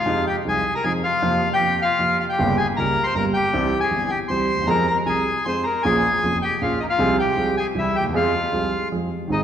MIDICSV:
0, 0, Header, 1, 3, 480
1, 0, Start_track
1, 0, Key_signature, -4, "minor"
1, 0, Tempo, 384369
1, 87, Time_signature, 3, 2, 24, 8
1, 11786, End_track
2, 0, Start_track
2, 0, Title_t, "Bandoneon"
2, 0, Program_c, 0, 23
2, 0, Note_on_c, 0, 65, 67
2, 0, Note_on_c, 0, 77, 98
2, 305, Note_off_c, 0, 77, 0
2, 316, Note_off_c, 0, 65, 0
2, 339, Note_on_c, 0, 79, 76
2, 358, Note_on_c, 0, 67, 60
2, 445, Note_off_c, 0, 79, 0
2, 460, Note_off_c, 0, 67, 0
2, 603, Note_on_c, 0, 80, 86
2, 609, Note_on_c, 0, 68, 71
2, 924, Note_off_c, 0, 80, 0
2, 927, Note_off_c, 0, 68, 0
2, 937, Note_on_c, 0, 82, 84
2, 951, Note_on_c, 0, 70, 67
2, 1045, Note_on_c, 0, 80, 88
2, 1046, Note_off_c, 0, 82, 0
2, 1054, Note_off_c, 0, 70, 0
2, 1054, Note_on_c, 0, 68, 67
2, 1155, Note_off_c, 0, 80, 0
2, 1162, Note_off_c, 0, 68, 0
2, 1295, Note_on_c, 0, 77, 84
2, 1305, Note_on_c, 0, 65, 71
2, 1858, Note_off_c, 0, 65, 0
2, 1913, Note_off_c, 0, 77, 0
2, 1915, Note_on_c, 0, 79, 89
2, 1930, Note_on_c, 0, 67, 66
2, 2239, Note_off_c, 0, 79, 0
2, 2247, Note_off_c, 0, 67, 0
2, 2273, Note_on_c, 0, 77, 94
2, 2305, Note_on_c, 0, 65, 71
2, 2710, Note_off_c, 0, 77, 0
2, 2727, Note_off_c, 0, 65, 0
2, 2750, Note_on_c, 0, 77, 76
2, 2771, Note_on_c, 0, 65, 52
2, 2800, Note_off_c, 0, 77, 0
2, 2817, Note_off_c, 0, 65, 0
2, 2865, Note_on_c, 0, 79, 86
2, 2898, Note_on_c, 0, 67, 76
2, 3194, Note_off_c, 0, 79, 0
2, 3211, Note_off_c, 0, 67, 0
2, 3216, Note_on_c, 0, 80, 94
2, 3238, Note_on_c, 0, 68, 69
2, 3323, Note_off_c, 0, 80, 0
2, 3340, Note_off_c, 0, 68, 0
2, 3454, Note_on_c, 0, 82, 96
2, 3486, Note_on_c, 0, 70, 77
2, 3792, Note_on_c, 0, 84, 83
2, 3804, Note_off_c, 0, 70, 0
2, 3823, Note_off_c, 0, 82, 0
2, 3823, Note_on_c, 0, 72, 73
2, 3912, Note_off_c, 0, 84, 0
2, 3929, Note_off_c, 0, 72, 0
2, 3935, Note_on_c, 0, 82, 90
2, 3960, Note_on_c, 0, 70, 72
2, 4042, Note_off_c, 0, 82, 0
2, 4061, Note_off_c, 0, 70, 0
2, 4166, Note_on_c, 0, 79, 95
2, 4195, Note_on_c, 0, 67, 67
2, 4727, Note_off_c, 0, 79, 0
2, 4742, Note_off_c, 0, 67, 0
2, 4748, Note_on_c, 0, 80, 84
2, 4787, Note_on_c, 0, 68, 70
2, 5110, Note_on_c, 0, 79, 81
2, 5116, Note_off_c, 0, 68, 0
2, 5129, Note_on_c, 0, 67, 65
2, 5132, Note_off_c, 0, 80, 0
2, 5224, Note_off_c, 0, 79, 0
2, 5239, Note_off_c, 0, 67, 0
2, 5344, Note_on_c, 0, 84, 88
2, 5373, Note_on_c, 0, 72, 74
2, 5822, Note_off_c, 0, 72, 0
2, 5830, Note_on_c, 0, 82, 94
2, 5856, Note_off_c, 0, 84, 0
2, 5865, Note_on_c, 0, 70, 73
2, 6066, Note_off_c, 0, 82, 0
2, 6085, Note_off_c, 0, 70, 0
2, 6087, Note_on_c, 0, 82, 87
2, 6118, Note_on_c, 0, 70, 58
2, 6197, Note_off_c, 0, 82, 0
2, 6221, Note_off_c, 0, 70, 0
2, 6322, Note_on_c, 0, 80, 81
2, 6357, Note_on_c, 0, 68, 62
2, 6795, Note_off_c, 0, 68, 0
2, 6809, Note_on_c, 0, 84, 85
2, 6825, Note_off_c, 0, 80, 0
2, 6841, Note_on_c, 0, 72, 70
2, 7037, Note_off_c, 0, 84, 0
2, 7039, Note_on_c, 0, 82, 77
2, 7054, Note_off_c, 0, 72, 0
2, 7069, Note_on_c, 0, 70, 58
2, 7271, Note_off_c, 0, 82, 0
2, 7275, Note_on_c, 0, 80, 96
2, 7287, Note_off_c, 0, 70, 0
2, 7313, Note_on_c, 0, 68, 72
2, 7954, Note_off_c, 0, 80, 0
2, 7973, Note_off_c, 0, 68, 0
2, 8020, Note_on_c, 0, 79, 89
2, 8043, Note_on_c, 0, 67, 58
2, 8253, Note_off_c, 0, 67, 0
2, 8261, Note_on_c, 0, 77, 71
2, 8264, Note_off_c, 0, 79, 0
2, 8280, Note_on_c, 0, 65, 62
2, 8481, Note_off_c, 0, 77, 0
2, 8491, Note_off_c, 0, 65, 0
2, 8491, Note_on_c, 0, 75, 74
2, 8519, Note_on_c, 0, 63, 60
2, 8545, Note_off_c, 0, 75, 0
2, 8567, Note_off_c, 0, 63, 0
2, 8611, Note_on_c, 0, 77, 93
2, 8629, Note_on_c, 0, 65, 77
2, 8945, Note_off_c, 0, 77, 0
2, 8955, Note_off_c, 0, 65, 0
2, 8985, Note_on_c, 0, 79, 78
2, 9006, Note_on_c, 0, 67, 72
2, 9423, Note_off_c, 0, 79, 0
2, 9434, Note_off_c, 0, 67, 0
2, 9455, Note_on_c, 0, 80, 84
2, 9478, Note_on_c, 0, 68, 62
2, 9561, Note_off_c, 0, 80, 0
2, 9579, Note_off_c, 0, 68, 0
2, 9720, Note_on_c, 0, 76, 75
2, 9735, Note_on_c, 0, 64, 61
2, 9936, Note_off_c, 0, 64, 0
2, 9938, Note_on_c, 0, 79, 81
2, 9950, Note_off_c, 0, 76, 0
2, 9956, Note_on_c, 0, 67, 62
2, 10044, Note_off_c, 0, 79, 0
2, 10058, Note_off_c, 0, 67, 0
2, 10189, Note_on_c, 0, 77, 81
2, 10206, Note_on_c, 0, 65, 62
2, 11089, Note_off_c, 0, 77, 0
2, 11098, Note_off_c, 0, 65, 0
2, 11637, Note_on_c, 0, 63, 60
2, 11655, Note_on_c, 0, 75, 78
2, 11739, Note_off_c, 0, 63, 0
2, 11753, Note_off_c, 0, 75, 0
2, 11786, End_track
3, 0, Start_track
3, 0, Title_t, "Grand piano"
3, 0, Program_c, 1, 0
3, 72, Note_on_c, 1, 48, 63
3, 75, Note_on_c, 1, 41, 82
3, 75, Note_on_c, 1, 53, 75
3, 76, Note_on_c, 1, 56, 55
3, 76, Note_on_c, 1, 63, 75
3, 282, Note_off_c, 1, 48, 0
3, 284, Note_off_c, 1, 41, 0
3, 284, Note_off_c, 1, 56, 0
3, 285, Note_off_c, 1, 63, 0
3, 287, Note_off_c, 1, 53, 0
3, 561, Note_on_c, 1, 48, 52
3, 562, Note_on_c, 1, 53, 41
3, 566, Note_on_c, 1, 56, 41
3, 567, Note_on_c, 1, 36, 53
3, 570, Note_on_c, 1, 63, 46
3, 768, Note_off_c, 1, 48, 0
3, 768, Note_off_c, 1, 53, 0
3, 770, Note_off_c, 1, 56, 0
3, 771, Note_off_c, 1, 36, 0
3, 773, Note_off_c, 1, 63, 0
3, 1050, Note_on_c, 1, 48, 45
3, 1050, Note_on_c, 1, 53, 55
3, 1051, Note_on_c, 1, 56, 39
3, 1053, Note_on_c, 1, 41, 49
3, 1063, Note_on_c, 1, 63, 54
3, 1253, Note_off_c, 1, 48, 0
3, 1254, Note_off_c, 1, 56, 0
3, 1255, Note_off_c, 1, 41, 0
3, 1257, Note_off_c, 1, 53, 0
3, 1259, Note_off_c, 1, 63, 0
3, 1526, Note_on_c, 1, 41, 78
3, 1529, Note_on_c, 1, 53, 86
3, 1531, Note_on_c, 1, 48, 65
3, 1532, Note_on_c, 1, 65, 80
3, 1534, Note_on_c, 1, 58, 61
3, 1733, Note_off_c, 1, 41, 0
3, 1734, Note_off_c, 1, 48, 0
3, 1735, Note_off_c, 1, 58, 0
3, 1735, Note_off_c, 1, 65, 0
3, 1736, Note_off_c, 1, 53, 0
3, 2005, Note_on_c, 1, 53, 48
3, 2006, Note_on_c, 1, 41, 52
3, 2008, Note_on_c, 1, 48, 40
3, 2011, Note_on_c, 1, 58, 39
3, 2016, Note_on_c, 1, 65, 46
3, 2212, Note_off_c, 1, 41, 0
3, 2212, Note_off_c, 1, 48, 0
3, 2212, Note_off_c, 1, 53, 0
3, 2214, Note_off_c, 1, 58, 0
3, 2216, Note_off_c, 1, 65, 0
3, 2483, Note_on_c, 1, 41, 56
3, 2488, Note_on_c, 1, 53, 54
3, 2489, Note_on_c, 1, 58, 43
3, 2492, Note_on_c, 1, 48, 42
3, 2492, Note_on_c, 1, 65, 51
3, 2693, Note_off_c, 1, 41, 0
3, 2693, Note_off_c, 1, 58, 0
3, 2694, Note_off_c, 1, 48, 0
3, 2694, Note_off_c, 1, 53, 0
3, 2694, Note_off_c, 1, 65, 0
3, 2980, Note_on_c, 1, 55, 69
3, 2983, Note_on_c, 1, 49, 73
3, 2985, Note_on_c, 1, 43, 78
3, 2988, Note_on_c, 1, 31, 92
3, 2990, Note_on_c, 1, 58, 66
3, 2990, Note_on_c, 1, 67, 81
3, 3178, Note_off_c, 1, 55, 0
3, 3179, Note_off_c, 1, 49, 0
3, 3180, Note_off_c, 1, 43, 0
3, 3182, Note_off_c, 1, 31, 0
3, 3182, Note_off_c, 1, 58, 0
3, 3182, Note_off_c, 1, 67, 0
3, 3466, Note_on_c, 1, 55, 46
3, 3467, Note_on_c, 1, 37, 53
3, 3468, Note_on_c, 1, 49, 48
3, 3470, Note_on_c, 1, 67, 48
3, 3471, Note_on_c, 1, 58, 43
3, 3660, Note_off_c, 1, 55, 0
3, 3661, Note_off_c, 1, 37, 0
3, 3662, Note_off_c, 1, 49, 0
3, 3662, Note_off_c, 1, 67, 0
3, 3663, Note_off_c, 1, 58, 0
3, 3929, Note_on_c, 1, 31, 57
3, 3931, Note_on_c, 1, 49, 44
3, 3934, Note_on_c, 1, 43, 53
3, 3935, Note_on_c, 1, 55, 44
3, 3940, Note_on_c, 1, 67, 47
3, 3943, Note_on_c, 1, 58, 44
3, 4131, Note_off_c, 1, 31, 0
3, 4132, Note_off_c, 1, 49, 0
3, 4134, Note_off_c, 1, 43, 0
3, 4134, Note_off_c, 1, 55, 0
3, 4137, Note_off_c, 1, 67, 0
3, 4138, Note_off_c, 1, 58, 0
3, 4409, Note_on_c, 1, 52, 68
3, 4414, Note_on_c, 1, 48, 81
3, 4415, Note_on_c, 1, 36, 87
3, 4416, Note_on_c, 1, 60, 67
3, 4417, Note_on_c, 1, 55, 60
3, 4422, Note_on_c, 1, 67, 75
3, 4612, Note_off_c, 1, 52, 0
3, 4614, Note_off_c, 1, 48, 0
3, 4615, Note_off_c, 1, 36, 0
3, 4615, Note_off_c, 1, 60, 0
3, 4616, Note_off_c, 1, 55, 0
3, 4618, Note_off_c, 1, 67, 0
3, 4878, Note_on_c, 1, 52, 44
3, 4883, Note_on_c, 1, 31, 49
3, 4885, Note_on_c, 1, 43, 47
3, 4888, Note_on_c, 1, 55, 43
3, 4889, Note_on_c, 1, 60, 44
3, 4889, Note_on_c, 1, 67, 46
3, 5087, Note_off_c, 1, 52, 0
3, 5090, Note_off_c, 1, 31, 0
3, 5090, Note_off_c, 1, 43, 0
3, 5092, Note_off_c, 1, 55, 0
3, 5092, Note_off_c, 1, 60, 0
3, 5093, Note_off_c, 1, 67, 0
3, 5357, Note_on_c, 1, 52, 47
3, 5362, Note_on_c, 1, 67, 45
3, 5363, Note_on_c, 1, 55, 39
3, 5363, Note_on_c, 1, 60, 36
3, 5365, Note_on_c, 1, 36, 50
3, 5365, Note_on_c, 1, 48, 49
3, 5568, Note_off_c, 1, 52, 0
3, 5571, Note_off_c, 1, 55, 0
3, 5571, Note_off_c, 1, 60, 0
3, 5571, Note_off_c, 1, 67, 0
3, 5572, Note_off_c, 1, 36, 0
3, 5572, Note_off_c, 1, 48, 0
3, 5677, Note_on_c, 1, 38, 42
3, 5736, Note_off_c, 1, 38, 0
3, 5736, Note_on_c, 1, 39, 50
3, 5783, Note_on_c, 1, 40, 64
3, 5796, Note_off_c, 1, 39, 0
3, 5838, Note_on_c, 1, 53, 78
3, 5839, Note_on_c, 1, 56, 65
3, 5839, Note_on_c, 1, 68, 79
3, 5840, Note_on_c, 1, 60, 71
3, 5841, Note_on_c, 1, 41, 80
3, 5850, Note_off_c, 1, 40, 0
3, 6050, Note_off_c, 1, 56, 0
3, 6050, Note_off_c, 1, 68, 0
3, 6051, Note_off_c, 1, 41, 0
3, 6051, Note_off_c, 1, 53, 0
3, 6051, Note_off_c, 1, 60, 0
3, 6318, Note_on_c, 1, 36, 46
3, 6318, Note_on_c, 1, 48, 49
3, 6319, Note_on_c, 1, 53, 40
3, 6321, Note_on_c, 1, 60, 44
3, 6324, Note_on_c, 1, 56, 42
3, 6328, Note_on_c, 1, 68, 51
3, 6530, Note_off_c, 1, 36, 0
3, 6530, Note_off_c, 1, 48, 0
3, 6530, Note_off_c, 1, 53, 0
3, 6531, Note_off_c, 1, 60, 0
3, 6533, Note_off_c, 1, 56, 0
3, 6535, Note_off_c, 1, 68, 0
3, 6815, Note_on_c, 1, 53, 53
3, 6818, Note_on_c, 1, 56, 40
3, 6818, Note_on_c, 1, 60, 46
3, 6821, Note_on_c, 1, 41, 54
3, 6822, Note_on_c, 1, 68, 51
3, 7019, Note_off_c, 1, 53, 0
3, 7020, Note_off_c, 1, 56, 0
3, 7020, Note_off_c, 1, 60, 0
3, 7022, Note_off_c, 1, 41, 0
3, 7022, Note_off_c, 1, 68, 0
3, 7302, Note_on_c, 1, 46, 82
3, 7302, Note_on_c, 1, 58, 63
3, 7304, Note_on_c, 1, 53, 70
3, 7306, Note_on_c, 1, 34, 77
3, 7306, Note_on_c, 1, 61, 65
3, 7308, Note_on_c, 1, 68, 87
3, 7501, Note_off_c, 1, 46, 0
3, 7501, Note_off_c, 1, 58, 0
3, 7502, Note_off_c, 1, 53, 0
3, 7503, Note_off_c, 1, 34, 0
3, 7503, Note_off_c, 1, 61, 0
3, 7504, Note_off_c, 1, 68, 0
3, 7779, Note_on_c, 1, 29, 51
3, 7785, Note_on_c, 1, 41, 58
3, 7785, Note_on_c, 1, 58, 42
3, 7788, Note_on_c, 1, 53, 43
3, 7790, Note_on_c, 1, 61, 43
3, 7792, Note_on_c, 1, 68, 50
3, 7979, Note_off_c, 1, 29, 0
3, 7982, Note_off_c, 1, 41, 0
3, 7982, Note_off_c, 1, 58, 0
3, 7983, Note_off_c, 1, 53, 0
3, 7984, Note_off_c, 1, 61, 0
3, 7985, Note_off_c, 1, 68, 0
3, 8262, Note_on_c, 1, 46, 57
3, 8262, Note_on_c, 1, 53, 47
3, 8266, Note_on_c, 1, 58, 42
3, 8266, Note_on_c, 1, 61, 43
3, 8268, Note_on_c, 1, 34, 49
3, 8268, Note_on_c, 1, 68, 56
3, 8459, Note_off_c, 1, 46, 0
3, 8459, Note_off_c, 1, 53, 0
3, 8461, Note_off_c, 1, 58, 0
3, 8461, Note_off_c, 1, 61, 0
3, 8462, Note_off_c, 1, 34, 0
3, 8462, Note_off_c, 1, 68, 0
3, 8723, Note_on_c, 1, 48, 87
3, 8724, Note_on_c, 1, 56, 67
3, 8725, Note_on_c, 1, 53, 65
3, 8727, Note_on_c, 1, 36, 90
3, 8734, Note_on_c, 1, 60, 61
3, 8734, Note_on_c, 1, 68, 87
3, 8929, Note_off_c, 1, 56, 0
3, 8930, Note_off_c, 1, 36, 0
3, 8930, Note_off_c, 1, 53, 0
3, 8932, Note_off_c, 1, 48, 0
3, 8934, Note_off_c, 1, 60, 0
3, 8934, Note_off_c, 1, 68, 0
3, 9197, Note_on_c, 1, 48, 54
3, 9198, Note_on_c, 1, 36, 57
3, 9204, Note_on_c, 1, 60, 43
3, 9205, Note_on_c, 1, 56, 39
3, 9205, Note_on_c, 1, 68, 50
3, 9206, Note_on_c, 1, 53, 41
3, 9405, Note_off_c, 1, 36, 0
3, 9405, Note_off_c, 1, 48, 0
3, 9408, Note_off_c, 1, 56, 0
3, 9408, Note_off_c, 1, 60, 0
3, 9408, Note_off_c, 1, 68, 0
3, 9409, Note_off_c, 1, 53, 0
3, 9677, Note_on_c, 1, 48, 59
3, 9678, Note_on_c, 1, 52, 47
3, 9681, Note_on_c, 1, 55, 43
3, 9684, Note_on_c, 1, 36, 52
3, 9685, Note_on_c, 1, 67, 48
3, 9687, Note_on_c, 1, 60, 44
3, 9884, Note_off_c, 1, 48, 0
3, 9884, Note_off_c, 1, 52, 0
3, 9886, Note_off_c, 1, 55, 0
3, 9887, Note_off_c, 1, 36, 0
3, 9887, Note_off_c, 1, 67, 0
3, 9889, Note_off_c, 1, 60, 0
3, 10002, Note_on_c, 1, 38, 46
3, 10044, Note_on_c, 1, 39, 62
3, 10055, Note_off_c, 1, 38, 0
3, 10104, Note_on_c, 1, 40, 73
3, 10106, Note_off_c, 1, 39, 0
3, 10161, Note_on_c, 1, 53, 84
3, 10161, Note_on_c, 1, 56, 65
3, 10165, Note_off_c, 1, 40, 0
3, 10167, Note_on_c, 1, 60, 69
3, 10168, Note_on_c, 1, 41, 94
3, 10171, Note_on_c, 1, 68, 76
3, 10365, Note_off_c, 1, 56, 0
3, 10368, Note_off_c, 1, 60, 0
3, 10369, Note_off_c, 1, 41, 0
3, 10369, Note_off_c, 1, 53, 0
3, 10370, Note_off_c, 1, 68, 0
3, 10642, Note_on_c, 1, 53, 46
3, 10647, Note_on_c, 1, 56, 44
3, 10648, Note_on_c, 1, 60, 41
3, 10649, Note_on_c, 1, 48, 50
3, 10650, Note_on_c, 1, 36, 48
3, 10658, Note_on_c, 1, 68, 52
3, 10846, Note_off_c, 1, 53, 0
3, 10849, Note_off_c, 1, 48, 0
3, 10849, Note_off_c, 1, 56, 0
3, 10849, Note_off_c, 1, 60, 0
3, 10850, Note_off_c, 1, 36, 0
3, 10854, Note_off_c, 1, 68, 0
3, 11136, Note_on_c, 1, 56, 43
3, 11137, Note_on_c, 1, 53, 50
3, 11139, Note_on_c, 1, 68, 52
3, 11141, Note_on_c, 1, 41, 55
3, 11144, Note_on_c, 1, 60, 43
3, 11334, Note_off_c, 1, 56, 0
3, 11335, Note_off_c, 1, 53, 0
3, 11336, Note_off_c, 1, 68, 0
3, 11337, Note_off_c, 1, 41, 0
3, 11339, Note_off_c, 1, 60, 0
3, 11584, Note_on_c, 1, 51, 52
3, 11600, Note_on_c, 1, 56, 49
3, 11609, Note_on_c, 1, 32, 60
3, 11610, Note_on_c, 1, 44, 65
3, 11622, Note_on_c, 1, 60, 46
3, 11634, Note_on_c, 1, 68, 59
3, 11786, Note_off_c, 1, 32, 0
3, 11786, Note_off_c, 1, 44, 0
3, 11786, Note_off_c, 1, 51, 0
3, 11786, Note_off_c, 1, 56, 0
3, 11786, Note_off_c, 1, 60, 0
3, 11786, Note_off_c, 1, 68, 0
3, 11786, End_track
0, 0, End_of_file